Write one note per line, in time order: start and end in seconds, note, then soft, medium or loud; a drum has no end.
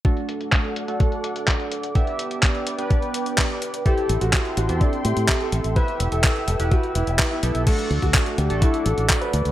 0.05 0.85 A3 medium
0.05 0.85 D4 medium
0.05 0.85 F#4 medium
0.05 1.93 A4 medium
0.05 0.85 A4 medium
0.05 1.93 D5 medium
0.05 1.93 F#5 medium
0.05 3.82 D6 medium
0.05 kick loud
0.05 closed hi-hat medium
0.17 closed hi-hat soft
0.29 closed hi-hat medium
0.41 closed hi-hat soft
0.52 kick loud
0.52 clap loud
0.52 closed hi-hat medium
0.64 closed hi-hat soft
0.76 closed hi-hat medium
0.88 1.92 A3 medium
0.88 1.92 D4 medium
0.88 1.92 F#4 medium
0.88 1.92 A4 medium
0.88 closed hi-hat medium
1.00 kick loud
1.00 closed hi-hat medium
1.12 closed hi-hat soft
1.24 closed hi-hat medium
1.36 closed hi-hat medium
1.48 kick loud
1.48 clap loud
1.48 closed hi-hat medium
1.60 closed hi-hat soft
1.72 closed hi-hat medium
1.83 closed hi-hat medium
1.95 2.76 B3 medium
1.95 2.76 D4 medium
1.95 2.76 G4 medium
1.95 3.84 B4 medium
1.95 3.84 D5 medium
1.95 2.76 E5 medium
1.95 3.84 G5 medium
1.95 kick loud
1.95 closed hi-hat medium
2.07 closed hi-hat soft
2.19 closed hi-hat medium
2.31 closed hi-hat medium
2.43 kick loud
2.43 clap loud
2.43 closed hi-hat medium
2.55 closed hi-hat soft
2.67 closed hi-hat medium
2.79 3.83 B3 medium
2.79 3.83 D4 medium
2.79 3.83 G4 medium
2.79 3.83 B4 medium
2.79 closed hi-hat soft
2.90 kick loud
2.90 closed hi-hat medium
3.02 closed hi-hat soft
3.14 closed hi-hat medium
3.26 closed hi-hat soft
3.38 kick loud
3.38 clap loud
3.38 closed hi-hat medium
3.50 closed hi-hat soft
3.62 closed hi-hat medium
3.74 closed hi-hat medium
3.86 4.66 C4 medium
3.86 4.66 E4 medium
3.86 4.15 G4 medium
3.86 4.66 G4 medium
3.86 4.66 A4 loud
3.86 5.74 A4 medium
3.86 7.63 E5 medium
3.86 5.74 G5 medium
3.86 5.74 C6 medium
3.86 kick loud
3.86 closed hi-hat medium
3.98 closed hi-hat soft
4.09 4.20 A1 medium
4.09 closed hi-hat medium
4.21 4.32 A1 medium
4.21 4.51 F#4 medium
4.21 closed hi-hat soft
4.33 kick loud
4.33 clap loud
4.33 closed hi-hat soft
4.45 closed hi-hat soft
4.57 4.68 A1 medium
4.57 4.77 F#4 medium
4.57 closed hi-hat medium
4.69 4.80 E2 medium
4.69 5.73 C4 medium
4.69 5.73 E4 medium
4.69 5.73 G4 medium
4.69 5.73 A4 medium
4.69 closed hi-hat medium
4.81 5.01 D4 medium
4.81 kick loud
4.81 closed hi-hat soft
4.93 closed hi-hat soft
5.05 5.16 A2 medium
5.05 5.35 G4 medium
5.05 closed hi-hat medium
5.17 5.27 A2 medium
5.17 closed hi-hat soft
5.29 kick loud
5.29 clap loud
5.29 closed hi-hat medium
5.41 5.70 A4 medium
5.41 closed hi-hat soft
5.52 5.63 A1 medium
5.52 closed hi-hat medium
5.64 5.75 A1 medium
5.64 closed hi-hat soft
5.76 6.57 B3 medium
5.76 6.57 E4 medium
5.76 6.57 G4 medium
5.76 7.65 B4 medium
5.76 6.06 B4 loud
5.76 6.57 E5 medium
5.76 7.65 G5 medium
5.76 7.65 E6 medium
5.76 kick loud
5.76 closed hi-hat soft
5.88 closed hi-hat soft
6.00 6.11 E1 medium
6.00 closed hi-hat medium
6.12 6.23 E1 medium
6.12 6.42 A4 medium
6.12 closed hi-hat soft
6.24 kick loud
6.24 clap loud
6.24 closed hi-hat soft
6.36 closed hi-hat soft
6.48 6.58 E1 medium
6.48 6.68 A4 medium
6.48 closed hi-hat medium
6.60 6.70 E1 medium
6.60 7.41 B3 medium
6.60 7.41 E4 medium
6.60 7.41 G4 medium
6.60 7.41 B4 medium
6.60 closed hi-hat soft
6.71 6.91 F#4 medium
6.71 kick loud
6.71 closed hi-hat soft
6.83 closed hi-hat soft
6.95 7.06 E1 medium
6.95 7.25 E4 medium
6.95 closed hi-hat medium
7.07 7.18 E1 medium
7.07 closed hi-hat soft
7.19 kick loud
7.19 clap loud
7.19 closed hi-hat soft
7.31 7.61 E4 medium
7.31 closed hi-hat soft
7.43 7.54 B1 medium
7.43 7.64 B3 medium
7.43 7.64 E4 medium
7.43 7.64 G4 medium
7.43 7.64 A4 medium
7.43 closed hi-hat medium
7.55 7.66 B1 medium
7.55 closed hi-hat medium
7.67 8.47 A3 medium
7.67 8.47 D4 medium
7.67 8.47 F#4 medium
7.67 7.96 A4 loud
7.67 9.52 A4 medium
7.67 8.47 A4 medium
7.67 9.52 D5 medium
7.67 9.52 F#5 medium
7.67 9.52 D6 medium
7.67 kick loud
7.67 closed hi-hat loud
7.67 crash medium
7.79 closed hi-hat soft
7.90 8.01 D2 medium
7.90 closed hi-hat soft
8.02 8.13 D2 medium
8.02 8.32 F#4 medium
8.02 kick medium
8.02 closed hi-hat soft
8.14 kick loud
8.14 clap loud
8.14 closed hi-hat medium
8.26 closed hi-hat soft
8.38 8.49 D2 loud
8.38 8.58 G4 medium
8.38 closed hi-hat medium
8.50 8.61 A1 medium
8.50 9.52 A3 medium
8.50 9.52 D4 medium
8.50 9.52 F#4 medium
8.50 9.52 A4 medium
8.50 closed hi-hat soft
8.62 8.82 E4 medium
8.62 kick loud
8.62 closed hi-hat loud
8.74 closed hi-hat soft
8.86 8.96 A1 medium
8.86 9.16 A4 medium
8.86 closed hi-hat medium
8.98 9.08 A1 medium
8.98 closed hi-hat soft
9.10 kick loud
9.10 clap loud
9.10 closed hi-hat loud
9.21 9.51 B4 medium
9.21 closed hi-hat soft
9.33 9.44 D2 medium
9.33 closed hi-hat medium
9.45 9.52 D2 medium
9.45 closed hi-hat soft